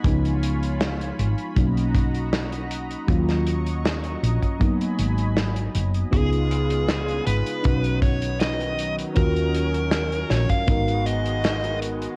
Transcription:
Already playing: G#5 B5
0.04 C#2 F3 G#3 B3 D#4 F4 C#5, kick, closed hi-hat
0.25 closed hi-hat
0.43 closed hi-hat
0.63 closed hi-hat
0.81 snare, closed hi-hat
1.01 closed hi-hat
1.19 G#1, closed hi-hat
1.38 closed hi-hat
1.55 B1 F#3 A#3 C#4 D#4 F#4 D#5 A#5, kick, closed hi-hat
1.77 closed hi-hat
1.95 kick, closed hi-hat
2.15 closed hi-hat
2.33 snare, closed hi-hat
2.52 closed hi-hat
2.71 closed hi-hat
2.91 closed hi-hat
3.07 D#2 F#3 A#3 C#4 F4 C#6, kick, closed hi-hat
3.29 snare, closed hi-hat
3.47 closed hi-hat
3.67 closed hi-hat
3.85 snare, closed hi-hat
4.04 closed hi-hat
4.23 A#1, closed hi-hat
4.42 kick, closed hi-hat
4.59 F#3 A#3 B3 D#4 G#5 B5, kick, closed hi-hat
4.81 closed hi-hat
4.99 G#1, closed hi-hat
5.18 closed hi-hat
5.37 snare, closed hi-hat
5.56 closed hi-hat
5.75 F#1, closed hi-hat
5.94 closed hi-hat
6.11 C#2 C#3 G#3 B3 D#4 F4 G#4, kick, closed hi-hat
6.33 closed hi-hat
6.51 closed hi-hat
6.70 closed hi-hat
6.88 snare, closed hi-hat
7.08 closed hi-hat
7.26 G#1 B4, closed hi-hat
7.46 closed hi-hat
7.63 B1 D#3 F#3 C#4 D#4 F#4 B4, kick, closed hi-hat
7.84 closed hi-hat
8.02 C#5, kick, closed hi-hat
8.22 closed hi-hat
8.40 D#5, snare, closed hi-hat
8.60 closed hi-hat
8.79 closed hi-hat
8.99 closed hi-hat
9.15 D#2 C#4 F4 F#4 A#4, kick, closed hi-hat
9.36 closed hi-hat
9.55 closed hi-hat
9.75 closed hi-hat
9.92 snare, closed hi-hat
10.12 closed hi-hat
10.30 A#1 C#5, snare, closed hi-hat
10.49 F5, kick, closed hi-hat
10.67 G#1 D#3 G#3 B3 D#4 F#4 A#4, kick, closed hi-hat
10.88 closed hi-hat
11.06 D#5, closed hi-hat
11.26 closed hi-hat
11.44 snare, closed hi-hat
11.64 closed hi-hat
11.82 closed hi-hat
12.02 closed hi-hat

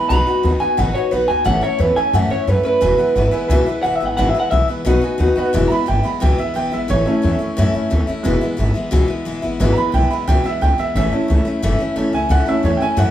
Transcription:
Already playing: G#3
0.08 B1 B2 F#3 B3 D#4 B4 D#5 F#5 B5
0.12 F#4
0.26 B3 D#4 F#4 B4 D#5 F#5, muted upright bass stroke
0.43 D#2 F#3 B3 D#4 F#4 B4 D#5 F#5
0.60 B3 D#4 F#4 B4 D#5 G#5, muted upright bass stroke
0.77 A1 B2 F#3 B3 D#4 F#4 B4 D#5 F#5
0.94 B3 D#4 F#4 B4 C#5 D#5 F#5, muted upright bass stroke
1.11 B1 F#3 B3 D#4 F#4 B4 D#5 F#5
1.28 D#2 B3 D#4 F#4 B4 D#5 G#5 A5
1.44 A1 A2 E3 A3 C#4 E4 C#5 E5 F#5 A5
1.61 A3 C#4 E4 C#5 E5 A5, muted upright bass stroke
1.79 E2 E3 A3 C#4 E4 B4 C#5 E5 B5
1.96 A3 C#4 E4 C#5 E5 G#5 A5, muted upright bass stroke
2.13 F#2 A2 E3 A3 C#4 E4 C#5 E5 F#5 A5
2.30 A3 C#4 E4 C#5 E5 F#5, muted upright bass stroke
2.47 F#2 E3 A3 C#4 E4 B4 C#5 E5 F#5
2.63 A3 C#4 E4 B4 C#5 E5 B5, muted upright bass stroke
2.81 E1 E2 B2 E3 G#3 B3 E4 B4 E5 G#5
2.98 E3 G#3 B3 E4 B4 E5 F#5, muted upright bass stroke
3.15 G#1 E3 G#3 B3 E4 B4 E5 F#5
3.31 E3 G#3 B3 E4 B4 E5 G#5, muted upright bass stroke
3.48 C#2 E2 B2 E3 G#3 B3 E4 B4 E5 G#5
3.66 E3 G#3 B3 E4 B4 E5 B5
3.82 E1 E3 G#3 B3 E4 B4 E5 F#5 G#5
3.95 E5
4.00 G#1 E3 G#3 B3 E4 B4 E5 G#5
4.05 F#5
4.17 G#1 E2 B2 E3 G#3 B3 E4 B4 E5 F#5 G#5
4.29 E5
4.33 E3 G#3 B3 E4 B4 E5 G#5
4.40 F#5
4.51 B1 E3 G#3 B3 E4 B4 E5 G#5
4.68 E3 G#3 B3 E4 B4 E5 B5, muted upright bass stroke
4.85 B1 B2 F#3 B3 D#4 F#4 B4 D#5 F#5
5.01 B3 D#4 F#4 B4 D#5 G#5, muted upright bass stroke
5.18 D#2 F#3 B3 D#4 F#4 B4 D#5 F#5
5.36 B3 D#4 F#4 B4 D#5 F#5, muted upright bass stroke
5.53 E1 E2 B2 E3 G#3 B3 E4
5.68 G#3 B3 E4 A#5
5.72 E3 B5, muted upright bass stroke
5.86 G#1 E3 G#3 B3 E4 G5
6.03 E3 G#3 B3 E4 B5
6.20 C#2 E2 B2 E3 G#3 B3 E4 G5
6.38 E3 G#3 B3 E4 E5, muted upright bass stroke
6.54 E1 E3 G#3 B3 E4 G5
6.71 G#1 E3 G#3 B3 E4 E5
6.88 A1 A2 E3 A3 C#4 E4 C#5
7.06 A3 C#4 E4, muted upright bass stroke
7.22 E2 E3 A3 C#4 E4
7.39 A3 C#4 E4, muted upright bass stroke
7.57 F#2 A2 E3 A3 C#4 E4
7.73 A3 C#4 E4, muted upright bass stroke
7.90 D#2 E3 A3 C#4 E4
8.07 A3 C#4 E4, muted upright bass stroke
8.23 E1 E2 B2 E3 G#3 B3 E4
8.41 E3 G#3 B3 E4, muted upright bass stroke
8.57 G#1 E3 G#3 B3 E4
8.74 E3 G#3 B3 E4, muted upright bass stroke
8.91 C#2 E2 B2 E3 G#3 B3 E4
9.08 E3 G#3 B3 E4
9.25 E1 E3 G#3 B3 E4
9.42 G#1 E3 G#3 B3 E4
9.60 G#1 E2 B2 E3 G#3 B3 E4
9.73 B3 E4 A#5
9.78 E3 G#3 B5
9.92 B1 E3 G#3 B3 E4 G5
10.11 E3 G#3 B3 E4 B5
10.27 C#2 E2 B2 E3 G#3 B3 E4 G5
10.44 E3 G#3 B3 E4 E5
10.61 C#2 E3 G#3 B3 E4 G5
10.78 E3 G#3 B3 E4 E5, muted upright bass stroke
10.95 A1 A2 E3 A3 C#4 E4 E5
11.12 A3 C#4 E4, muted upright bass stroke
11.28 C#2 E3 A3 C#4 E4
11.45 A3 C#4 E4, muted upright bass stroke
11.63 F#1 A2 E3 A3 C#4 E4
11.78 A3 C#4 E4
11.96 A1 E3 A3 C#4 E4
12.13 C#2 A3 C#4 E4 G#5
12.29 C#2 A2 E3 A3 C#4 E4 F#5
12.46 A3 C#4 E4 E5
12.63 E2 E3 A3 C#4 E4 C#5
12.77 E4 G5, muted upright bass stroke
12.82 A3 C#4 G#5
12.97 F#2 A2 E3 A3 C#4 E4 F#5

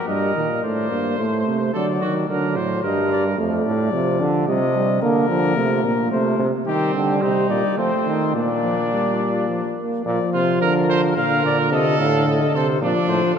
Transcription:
0.08 G2 G3 A#4 D#5
0.35 A#2 D#3
0.63 A2 A3 C5 D5
0.91 G2 A#3
1.18 A2 A3 C5
1.46 C3
1.73 D3 F#3 A4 D5
2.01 D#3 F#4
2.29 D3 F#3 A#4 D5
2.56 A2 C5
2.83 G2 G3 A#4 D#5
3.12 D5
3.38 F2 A3 D5
3.65 A2
3.93 C3 F3
4.20 D3
4.47 C3 G3 D#5
4.75 G3
5.02 D3 A#3 A#4
5.29 D3 F3
5.56 C3 A3
5.84 A#2 A#3
6.11 C3 A3 C5
6.39 C3
6.66 D#3 G3 C4 G4
6.94 D3 G4
7.22 C3 D#4 C5
7.50 A#2 D5
7.78 F3 A3 C4 C5
8.06 D#3
8.35 A#2 A#3 D4 D5
8.63 F3
8.92 G3
9.49 F3
9.77 A#3
10.05 A#2 F3 D5
10.33 C3 F4 C5
10.61 D3 A#4
10.89 C5
11.16 A#2 D3 A#4 F5
11.44 A#2 D5
11.72 C3 A4 D#5
11.99 A2 F5
12.27 A2 D#5
12.54 C3 A4 C5
12.81 A#2 F3 D4 D5
13.08 A2 C5
13.35 F3 A4

